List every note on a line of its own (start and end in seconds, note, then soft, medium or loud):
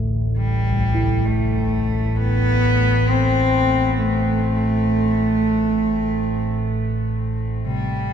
0.00 7.64 A1 medium
0.00 0.91 D2 medium
0.00 7.64 A2 medium
0.37 1.27 G3 loud
0.71 6.17 C2 medium
0.95 6.41 E4 medium
1.26 2.18 A3 medium
2.16 3.10 B3 loud
3.09 3.97 C4 loud
3.98 7.14 A3 loud
7.65 8.13 A1 medium
7.65 8.13 A2 medium
7.65 8.13 C3 medium
7.65 8.13 G3 loud